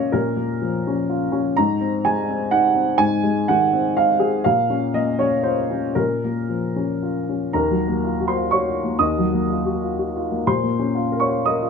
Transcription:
0.00 0.13 A#2 soft
0.00 0.16 A#3 soft
0.00 0.28 C#4 soft
0.00 0.16 F4 soft
0.00 0.13 C#5 medium
0.00 0.16 D#5 medium
0.00 0.16 F5 medium
0.12 1.53 A#2 medium
0.12 1.32 A#4 medium
0.36 0.75 A#3 soft
0.62 0.99 F3 soft
0.87 1.24 C#4 soft
1.10 1.48 F4 soft
1.32 1.57 C#4 soft
1.57 2.97 G#2 medium
1.57 2.05 A#5 medium
1.81 2.19 C4 soft
2.05 2.43 G#3 soft
2.05 2.52 G#5 medium
2.29 2.67 C4 medium
2.51 2.91 D#4 soft
2.51 3.00 F#5 medium
2.75 3.15 C4 medium
2.98 4.41 G#2 medium
2.98 3.48 G#5 medium
3.23 3.63 G#3 soft
3.48 3.88 D#3 soft
3.48 3.97 F#5 medium
3.73 4.12 C4 soft
3.97 4.36 D#4 soft
3.97 4.21 F5 medium
4.20 4.45 C4 soft
4.20 4.45 G#4 medium
4.44 5.93 A#2 medium
4.44 4.95 F5 medium
4.70 5.10 C#4 soft
4.94 5.35 A#3 soft
4.94 5.20 D#5 medium
5.19 5.61 C#4 soft
5.19 5.45 C#5 medium
5.43 5.86 F4 soft
5.43 5.96 C5 medium
5.70 6.13 C#4 soft
5.95 7.49 A#2 medium
5.95 7.01 A#4 medium
6.24 6.66 A#3 soft
6.49 6.91 F3 soft
6.76 7.18 C#4 soft
7.03 7.44 F4 soft
7.29 7.54 C#4 soft
7.53 8.97 D#2 medium
7.53 8.24 A#4 medium
7.53 8.27 A#5 medium
7.71 7.97 F#3 soft
7.88 8.13 A#3 soft
8.04 8.29 F4 soft
8.20 8.46 F#4 soft
8.28 8.51 C5 soft
8.28 8.52 C6 medium
8.36 8.61 F4 soft
8.51 8.78 F#4 soft
8.51 8.98 C#5 soft
8.51 9.00 C#6 medium
8.68 8.94 F4 soft
8.84 9.10 A#3 soft
8.99 10.41 D#2 soft
8.99 10.18 D#5 medium
8.99 10.21 D#6 medium
9.18 9.43 F#3 soft
9.33 9.59 A#3 soft
9.50 9.76 F4 soft
9.65 9.92 F#4 soft
9.82 10.08 F4 soft
9.99 10.24 F#4 soft
10.16 10.40 F4 soft
10.32 10.47 A#3 soft
10.47 11.70 A#2 medium
10.47 11.15 C5 medium
10.47 11.19 C6 medium
10.63 10.88 A#3 soft
10.79 11.04 C#4 soft
10.95 11.20 F4 soft
11.12 11.37 A#4 soft
11.20 11.42 C#5 soft
11.20 11.43 C#6 medium
11.28 11.53 F4 soft
11.46 11.70 A#4 soft
11.46 11.70 D#5 medium
11.46 11.70 D#6 medium
11.62 11.70 F4 soft

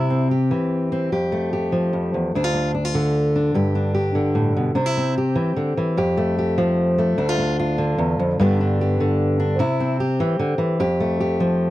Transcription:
0.00 0.51 C3 medium
0.00 0.31 E4 medium
0.10 0.91 C4 soft
0.31 1.09 G4 soft
0.51 1.09 E3 soft
0.92 1.09 C4 soft
1.12 1.92 F2 soft
1.12 1.52 G4 soft
1.32 2.53 A3 soft
1.53 2.31 G4 soft
1.72 2.31 F3 soft
1.93 2.13 F2 soft
2.14 2.34 E2 soft
2.35 3.54 D2 medium
2.35 2.44 D4 medium
2.44 2.74 F4 soft
2.54 2.73 D4 soft
2.74 2.85 D4 soft
2.85 3.55 F4 soft
2.94 4.14 D3 soft
3.36 3.53 D4 soft
3.54 4.74 G2 medium
3.54 3.94 G4 medium
3.75 4.74 D4 soft
3.95 4.75 G4 soft
4.15 4.76 D3 soft
4.35 4.56 A2 soft
4.57 4.75 B2 soft
4.75 5.36 C3 medium
4.75 4.86 D4 medium
4.86 5.16 E4 soft
4.97 5.95 C4 soft
5.18 5.96 G4 soft
5.35 5.56 E3 soft
5.56 5.77 D3 soft
5.77 5.98 E3 soft
5.97 7.16 F2 medium
5.97 6.37 G4 medium
6.17 6.97 A3 soft
6.39 7.16 G4 soft
6.58 7.16 F3 medium
6.98 7.38 A3 medium
7.18 7.98 D2 medium
7.18 7.29 D4 medium
7.29 7.58 F4 soft
7.39 8.37 D4 soft
7.59 8.37 F4 medium
7.78 8.39 D3 medium
7.98 8.19 E2 medium
8.19 8.39 F2 medium
8.39 9.57 G2 medium
8.39 8.99 D3 medium
8.39 9.58 B3 medium
8.39 8.59 D4 medium
8.39 8.81 G4 medium
8.61 9.38 D4 soft
8.81 9.59 G4 medium
9.00 9.60 D3 medium
9.40 9.57 D4 medium
9.59 10.19 C3 medium
9.59 10.00 E4 medium
9.80 10.77 C4 soft
10.00 10.77 G4 medium
10.20 10.39 E3 medium
10.39 10.58 D3 medium
10.58 10.79 E3 medium
10.80 11.70 F2 medium
10.80 11.19 G4 medium
11.00 11.70 A3 soft
11.20 11.70 G4 soft
11.40 11.70 F3 medium

